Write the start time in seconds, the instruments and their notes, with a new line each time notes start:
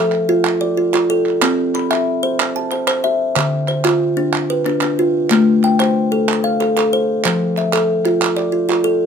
Already playing: kalimba A4 E5
0.12 clap
0.29 kalimba F4
0.45 clap
0.61 kalimba D5
0.77 kalimba F4
0.94 kalimba F4, clap
1.10 kalimba A4
1.26 clap
1.42 kalimba C4, clap
1.75 kalimba B5, clap
1.91 kalimba E5, clap
2.23 kalimba C5
2.40 clap
2.56 kalimba A5
2.71 kalimba C5, clap
2.87 kalimba C5, clap
3.04 kalimba E5
3.36 kalimba D3, clap
3.68 kalimba C5, clap
3.85 kalimba F4, clap
4.17 kalimba D4
4.33 clap
4.50 kalimba B4
4.65 kalimba D4, clap
4.81 kalimba D4, clap
4.99 kalimba F4
5.30 kalimba A3, clap
5.64 kalimba G5, clap
5.80 kalimba C5, clap
6.12 kalimba A4
6.29 clap
6.44 kalimba F5
6.60 kalimba A4, clap
6.77 kalimba A4, clap
6.93 kalimba C5
7.25 kalimba F3, clap
7.57 kalimba E5, clap
7.73 kalimba A4, clap
8.05 kalimba F4, clap
8.22 clap
8.37 kalimba D5, clap
8.52 kalimba F4
8.69 kalimba F4, clap
8.84 kalimba A4